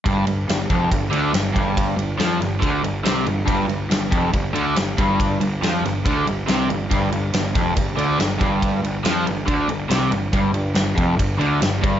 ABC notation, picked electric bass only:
X:1
M:4/4
L:1/8
Q:1/4=140
K:Cdor
V:1 name="Picked electric bass" clef=bass
G,,, G,,, G,,, F,,, G,,, D,, G,,, G,,,- | G,,, G,,, F,, G,,, D,, G,,, C,, G,,, | G,,, G,,, G,,, F,,, G,,, D,, G,,, G,,,- | G,,, G,,, F,, G,,, D,, G,,, C,, G,,, |
G,,, G,,, G,,, F,,, G,,, D,, G,,, G,,,- | G,,, G,,, F,, G,,, D,, G,,, C,, G,,, | G,,, G,,, G,,, F,,, G,,, D,, G,,, G,,, |]